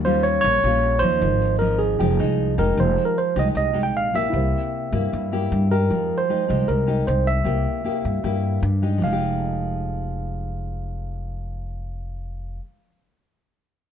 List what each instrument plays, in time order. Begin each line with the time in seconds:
Already playing: upright bass D#2, nylon-string guitar D#3, grand piano F4 G4 A#4 C#5
0.05 nylon-string guitar G3 C#4 F4, tine electric piano C5
0.23 tine electric piano C#5
0.41 upright bass A#1, nylon-string guitar A#2, tine electric piano C#5
0.64 upright bass A#1, nylon-string guitar G3 C#4 F4
0.99 upright bass D#2, nylon-string guitar F3 C4, tine electric piano C5
1.03 nylon-string guitar D#4
1.19 upright bass G#1, nylon-string guitar G#2, grand piano D#4 F4
1.23 grand piano A#4 C5
1.59 nylon-string guitar F3 C4 D#4, tine electric piano A#4
1.79 tine electric piano G#4
1.97 upright bass F1, nylon-string guitar F3 G#3 D#4 G4, grand piano D#4 G5
2.03 grand piano C5
2.19 upright bass C2, nylon-string guitar G#3 D#4
2.58 upright bass F1, nylon-string guitar G#3 D#4 G4, tine electric piano A#4
2.74 upright bass F1, nylon-string guitar F3, grand piano D#4 G4
2.80 tine electric piano C5, grand piano C5
3.05 tine electric piano A#4
3.18 tine electric piano C5
3.36 upright bass C2, nylon-string guitar G#3 D#4 G4, tine electric piano D#5
3.55 upright bass C2, nylon-string guitar C3, tine electric piano D#5
3.73 nylon-string guitar G#3 D#4 G4
3.83 tine electric piano G5
3.95 upright bass A#1, tine electric piano F5
4.13 nylon-string guitar A#3 E4 G4, tine electric piano E5
4.29 nylon-string guitar C3, grand piano E4 G4
4.34 upright bass C2, grand piano A#4 C5
4.92 upright bass G2, nylon-string guitar A#3 E4 G4
5.12 nylon-string guitar G2, upright bass G2
5.32 nylon-string guitar A#3 E4 G4
5.52 upright bass G2
5.71 nylon-string guitar G#3 D#4 G4, tine electric piano A#4
5.90 upright bass F2, nylon-string guitar F3
6.18 tine electric piano C5
6.29 nylon-string guitar G#3 D#4 G4
6.48 upright bass C2, nylon-string guitar G#3 D#4 G4
6.68 upright bass C2, nylon-string guitar C3, tine electric piano A#4
6.87 nylon-string guitar G#3 D#4 G4
7.07 upright bass C2, tine electric piano C5
7.27 tine electric piano E5
7.44 upright bass C2, nylon-string guitar C3 A#3 E4 G4
7.84 nylon-string guitar A#3 E4 G4
8.05 upright bass G2
8.23 nylon-string guitar G2 A#3 E4 G4, upright bass G2
8.62 upright bass G2
8.82 nylon-string guitar G#3 D#4 G4
8.98 nylon-string guitar F3
9.02 upright bass F1, nylon-string guitar G#3, tine electric piano F5
9.08 nylon-string guitar D#4 G4